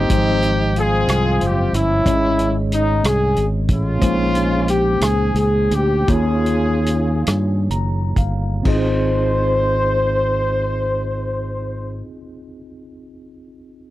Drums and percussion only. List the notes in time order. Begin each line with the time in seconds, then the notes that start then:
0.10 kick, closed hi-hat
0.43 closed hi-hat
0.76 closed hi-hat
1.08 cross-stick, closed hi-hat
1.41 closed hi-hat
1.74 closed hi-hat
2.06 kick, closed hi-hat
2.39 closed hi-hat
2.72 closed hi-hat
3.04 cross-stick, closed hi-hat
3.36 closed hi-hat
3.69 kick, closed hi-hat
4.02 kick, closed hi-hat
4.35 closed hi-hat
4.68 closed hi-hat
5.01 cross-stick, closed hi-hat
5.35 closed hi-hat
5.71 closed hi-hat
6.08 kick, closed hi-hat
6.46 closed hi-hat
6.86 closed hi-hat
7.27 cross-stick, closed hi-hat
7.71 closed hi-hat
8.16 kick, closed hi-hat
8.65 kick, crash